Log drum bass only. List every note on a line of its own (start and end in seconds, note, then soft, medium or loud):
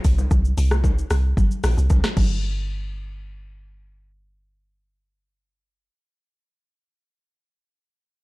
0.05 0.28 C2 medium
0.31 0.54 C2 loud
0.58 1.04 C2 loud
1.11 1.34 C2 loud
1.37 1.49 G1 medium
1.64 1.76 A#1 loud
1.77 1.89 C2 medium
1.90 2.02 C2 loud
2.17 5.91 G1 loud